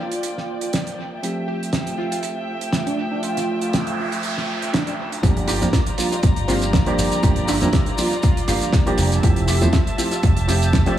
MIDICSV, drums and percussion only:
0, 0, Header, 1, 2, 480
1, 0, Start_track
1, 0, Tempo, 500000
1, 1183, Time_signature, 4, 2, 24, 8
1, 10548, End_track
2, 0, Start_track
2, 0, Title_t, "Drums"
2, 111, Note_on_c, 9, 42, 65
2, 207, Note_off_c, 9, 42, 0
2, 222, Note_on_c, 9, 42, 69
2, 318, Note_off_c, 9, 42, 0
2, 360, Note_on_c, 9, 38, 30
2, 456, Note_off_c, 9, 38, 0
2, 588, Note_on_c, 9, 42, 57
2, 684, Note_off_c, 9, 42, 0
2, 701, Note_on_c, 9, 42, 68
2, 707, Note_on_c, 9, 38, 93
2, 797, Note_off_c, 9, 42, 0
2, 803, Note_off_c, 9, 38, 0
2, 834, Note_on_c, 9, 42, 44
2, 930, Note_off_c, 9, 42, 0
2, 1184, Note_on_c, 9, 42, 77
2, 1280, Note_off_c, 9, 42, 0
2, 1563, Note_on_c, 9, 42, 51
2, 1658, Note_off_c, 9, 42, 0
2, 1658, Note_on_c, 9, 42, 80
2, 1659, Note_on_c, 9, 38, 105
2, 1754, Note_off_c, 9, 42, 0
2, 1755, Note_off_c, 9, 38, 0
2, 1793, Note_on_c, 9, 42, 52
2, 1889, Note_off_c, 9, 42, 0
2, 2035, Note_on_c, 9, 42, 68
2, 2131, Note_off_c, 9, 42, 0
2, 2138, Note_on_c, 9, 42, 76
2, 2234, Note_off_c, 9, 42, 0
2, 2507, Note_on_c, 9, 42, 58
2, 2603, Note_off_c, 9, 42, 0
2, 2616, Note_on_c, 9, 38, 107
2, 2620, Note_on_c, 9, 42, 77
2, 2712, Note_off_c, 9, 38, 0
2, 2716, Note_off_c, 9, 42, 0
2, 2754, Note_on_c, 9, 42, 51
2, 2850, Note_off_c, 9, 42, 0
2, 3099, Note_on_c, 9, 42, 78
2, 3195, Note_off_c, 9, 42, 0
2, 3236, Note_on_c, 9, 38, 34
2, 3236, Note_on_c, 9, 42, 57
2, 3332, Note_off_c, 9, 38, 0
2, 3332, Note_off_c, 9, 42, 0
2, 3470, Note_on_c, 9, 42, 55
2, 3566, Note_off_c, 9, 42, 0
2, 3585, Note_on_c, 9, 42, 85
2, 3588, Note_on_c, 9, 38, 111
2, 3681, Note_off_c, 9, 42, 0
2, 3684, Note_off_c, 9, 38, 0
2, 3714, Note_on_c, 9, 42, 47
2, 3810, Note_off_c, 9, 42, 0
2, 3957, Note_on_c, 9, 42, 58
2, 4053, Note_off_c, 9, 42, 0
2, 4061, Note_on_c, 9, 42, 75
2, 4157, Note_off_c, 9, 42, 0
2, 4201, Note_on_c, 9, 38, 36
2, 4297, Note_off_c, 9, 38, 0
2, 4438, Note_on_c, 9, 42, 54
2, 4534, Note_off_c, 9, 42, 0
2, 4546, Note_on_c, 9, 42, 79
2, 4552, Note_on_c, 9, 38, 106
2, 4642, Note_off_c, 9, 42, 0
2, 4648, Note_off_c, 9, 38, 0
2, 4676, Note_on_c, 9, 42, 45
2, 4772, Note_off_c, 9, 42, 0
2, 4919, Note_on_c, 9, 42, 53
2, 5015, Note_off_c, 9, 42, 0
2, 5023, Note_on_c, 9, 36, 116
2, 5027, Note_on_c, 9, 42, 93
2, 5032, Note_on_c, 9, 82, 45
2, 5119, Note_off_c, 9, 36, 0
2, 5123, Note_off_c, 9, 42, 0
2, 5128, Note_off_c, 9, 82, 0
2, 5152, Note_on_c, 9, 42, 57
2, 5248, Note_off_c, 9, 42, 0
2, 5256, Note_on_c, 9, 46, 116
2, 5270, Note_on_c, 9, 82, 98
2, 5352, Note_off_c, 9, 46, 0
2, 5366, Note_off_c, 9, 82, 0
2, 5392, Note_on_c, 9, 42, 57
2, 5400, Note_on_c, 9, 82, 59
2, 5488, Note_off_c, 9, 42, 0
2, 5496, Note_off_c, 9, 82, 0
2, 5501, Note_on_c, 9, 38, 127
2, 5502, Note_on_c, 9, 36, 105
2, 5504, Note_on_c, 9, 42, 92
2, 5508, Note_on_c, 9, 82, 53
2, 5597, Note_off_c, 9, 38, 0
2, 5598, Note_off_c, 9, 36, 0
2, 5600, Note_off_c, 9, 42, 0
2, 5604, Note_off_c, 9, 82, 0
2, 5630, Note_on_c, 9, 42, 61
2, 5726, Note_off_c, 9, 42, 0
2, 5740, Note_on_c, 9, 46, 106
2, 5756, Note_on_c, 9, 82, 96
2, 5836, Note_off_c, 9, 46, 0
2, 5852, Note_off_c, 9, 82, 0
2, 5878, Note_on_c, 9, 82, 63
2, 5879, Note_on_c, 9, 42, 58
2, 5974, Note_off_c, 9, 82, 0
2, 5975, Note_off_c, 9, 42, 0
2, 5980, Note_on_c, 9, 42, 108
2, 5980, Note_on_c, 9, 82, 55
2, 5983, Note_on_c, 9, 36, 126
2, 6076, Note_off_c, 9, 42, 0
2, 6076, Note_off_c, 9, 82, 0
2, 6079, Note_off_c, 9, 36, 0
2, 6109, Note_on_c, 9, 42, 54
2, 6205, Note_off_c, 9, 42, 0
2, 6222, Note_on_c, 9, 46, 101
2, 6232, Note_on_c, 9, 82, 94
2, 6318, Note_off_c, 9, 46, 0
2, 6328, Note_off_c, 9, 82, 0
2, 6350, Note_on_c, 9, 42, 54
2, 6356, Note_on_c, 9, 82, 57
2, 6446, Note_off_c, 9, 42, 0
2, 6452, Note_off_c, 9, 82, 0
2, 6463, Note_on_c, 9, 36, 111
2, 6463, Note_on_c, 9, 42, 89
2, 6465, Note_on_c, 9, 38, 127
2, 6470, Note_on_c, 9, 82, 52
2, 6559, Note_off_c, 9, 36, 0
2, 6559, Note_off_c, 9, 42, 0
2, 6561, Note_off_c, 9, 38, 0
2, 6566, Note_off_c, 9, 82, 0
2, 6588, Note_on_c, 9, 42, 59
2, 6684, Note_off_c, 9, 42, 0
2, 6707, Note_on_c, 9, 46, 109
2, 6710, Note_on_c, 9, 82, 94
2, 6803, Note_off_c, 9, 46, 0
2, 6806, Note_off_c, 9, 82, 0
2, 6830, Note_on_c, 9, 42, 60
2, 6835, Note_on_c, 9, 82, 55
2, 6926, Note_off_c, 9, 42, 0
2, 6931, Note_off_c, 9, 82, 0
2, 6942, Note_on_c, 9, 36, 123
2, 6942, Note_on_c, 9, 82, 48
2, 6945, Note_on_c, 9, 42, 97
2, 7038, Note_off_c, 9, 36, 0
2, 7038, Note_off_c, 9, 82, 0
2, 7041, Note_off_c, 9, 42, 0
2, 7064, Note_on_c, 9, 42, 61
2, 7160, Note_off_c, 9, 42, 0
2, 7182, Note_on_c, 9, 82, 85
2, 7186, Note_on_c, 9, 46, 110
2, 7278, Note_off_c, 9, 82, 0
2, 7282, Note_off_c, 9, 46, 0
2, 7307, Note_on_c, 9, 42, 62
2, 7318, Note_on_c, 9, 82, 63
2, 7403, Note_off_c, 9, 42, 0
2, 7414, Note_off_c, 9, 82, 0
2, 7419, Note_on_c, 9, 42, 98
2, 7423, Note_on_c, 9, 36, 116
2, 7423, Note_on_c, 9, 38, 127
2, 7430, Note_on_c, 9, 82, 46
2, 7515, Note_off_c, 9, 42, 0
2, 7519, Note_off_c, 9, 36, 0
2, 7519, Note_off_c, 9, 38, 0
2, 7526, Note_off_c, 9, 82, 0
2, 7547, Note_on_c, 9, 42, 49
2, 7643, Note_off_c, 9, 42, 0
2, 7662, Note_on_c, 9, 82, 92
2, 7666, Note_on_c, 9, 46, 107
2, 7758, Note_off_c, 9, 82, 0
2, 7762, Note_off_c, 9, 46, 0
2, 7786, Note_on_c, 9, 42, 62
2, 7797, Note_on_c, 9, 82, 59
2, 7882, Note_off_c, 9, 42, 0
2, 7893, Note_off_c, 9, 82, 0
2, 7899, Note_on_c, 9, 82, 46
2, 7900, Note_on_c, 9, 42, 89
2, 7904, Note_on_c, 9, 36, 127
2, 7995, Note_off_c, 9, 82, 0
2, 7996, Note_off_c, 9, 42, 0
2, 8000, Note_off_c, 9, 36, 0
2, 8037, Note_on_c, 9, 42, 62
2, 8133, Note_off_c, 9, 42, 0
2, 8139, Note_on_c, 9, 46, 107
2, 8147, Note_on_c, 9, 82, 90
2, 8235, Note_off_c, 9, 46, 0
2, 8243, Note_off_c, 9, 82, 0
2, 8268, Note_on_c, 9, 42, 63
2, 8278, Note_on_c, 9, 82, 61
2, 8364, Note_off_c, 9, 42, 0
2, 8374, Note_off_c, 9, 82, 0
2, 8376, Note_on_c, 9, 38, 122
2, 8382, Note_on_c, 9, 42, 96
2, 8383, Note_on_c, 9, 36, 117
2, 8384, Note_on_c, 9, 82, 53
2, 8472, Note_off_c, 9, 38, 0
2, 8478, Note_off_c, 9, 42, 0
2, 8479, Note_off_c, 9, 36, 0
2, 8480, Note_off_c, 9, 82, 0
2, 8512, Note_on_c, 9, 42, 56
2, 8608, Note_off_c, 9, 42, 0
2, 8617, Note_on_c, 9, 46, 112
2, 8623, Note_on_c, 9, 82, 83
2, 8713, Note_off_c, 9, 46, 0
2, 8719, Note_off_c, 9, 82, 0
2, 8752, Note_on_c, 9, 42, 55
2, 8758, Note_on_c, 9, 82, 56
2, 8848, Note_off_c, 9, 42, 0
2, 8854, Note_off_c, 9, 82, 0
2, 8863, Note_on_c, 9, 42, 97
2, 8864, Note_on_c, 9, 36, 121
2, 8869, Note_on_c, 9, 82, 48
2, 8959, Note_off_c, 9, 42, 0
2, 8960, Note_off_c, 9, 36, 0
2, 8965, Note_off_c, 9, 82, 0
2, 8988, Note_on_c, 9, 42, 59
2, 9084, Note_off_c, 9, 42, 0
2, 9100, Note_on_c, 9, 46, 124
2, 9102, Note_on_c, 9, 82, 86
2, 9196, Note_off_c, 9, 46, 0
2, 9198, Note_off_c, 9, 82, 0
2, 9229, Note_on_c, 9, 42, 56
2, 9236, Note_on_c, 9, 82, 60
2, 9325, Note_off_c, 9, 42, 0
2, 9332, Note_off_c, 9, 82, 0
2, 9338, Note_on_c, 9, 42, 93
2, 9341, Note_on_c, 9, 38, 119
2, 9343, Note_on_c, 9, 36, 112
2, 9345, Note_on_c, 9, 82, 46
2, 9434, Note_off_c, 9, 42, 0
2, 9437, Note_off_c, 9, 38, 0
2, 9439, Note_off_c, 9, 36, 0
2, 9441, Note_off_c, 9, 82, 0
2, 9476, Note_on_c, 9, 42, 53
2, 9572, Note_off_c, 9, 42, 0
2, 9583, Note_on_c, 9, 46, 105
2, 9593, Note_on_c, 9, 82, 86
2, 9679, Note_off_c, 9, 46, 0
2, 9689, Note_off_c, 9, 82, 0
2, 9708, Note_on_c, 9, 42, 63
2, 9720, Note_on_c, 9, 82, 62
2, 9804, Note_off_c, 9, 42, 0
2, 9816, Note_off_c, 9, 82, 0
2, 9820, Note_on_c, 9, 82, 50
2, 9821, Note_on_c, 9, 42, 91
2, 9824, Note_on_c, 9, 36, 127
2, 9916, Note_off_c, 9, 82, 0
2, 9917, Note_off_c, 9, 42, 0
2, 9920, Note_off_c, 9, 36, 0
2, 9951, Note_on_c, 9, 42, 56
2, 10047, Note_off_c, 9, 42, 0
2, 10067, Note_on_c, 9, 46, 116
2, 10070, Note_on_c, 9, 82, 79
2, 10163, Note_off_c, 9, 46, 0
2, 10166, Note_off_c, 9, 82, 0
2, 10193, Note_on_c, 9, 42, 56
2, 10198, Note_on_c, 9, 82, 59
2, 10289, Note_off_c, 9, 42, 0
2, 10294, Note_off_c, 9, 82, 0
2, 10302, Note_on_c, 9, 42, 92
2, 10304, Note_on_c, 9, 36, 114
2, 10304, Note_on_c, 9, 38, 109
2, 10310, Note_on_c, 9, 82, 45
2, 10398, Note_off_c, 9, 42, 0
2, 10400, Note_off_c, 9, 36, 0
2, 10400, Note_off_c, 9, 38, 0
2, 10406, Note_off_c, 9, 82, 0
2, 10427, Note_on_c, 9, 42, 58
2, 10523, Note_off_c, 9, 42, 0
2, 10548, End_track
0, 0, End_of_file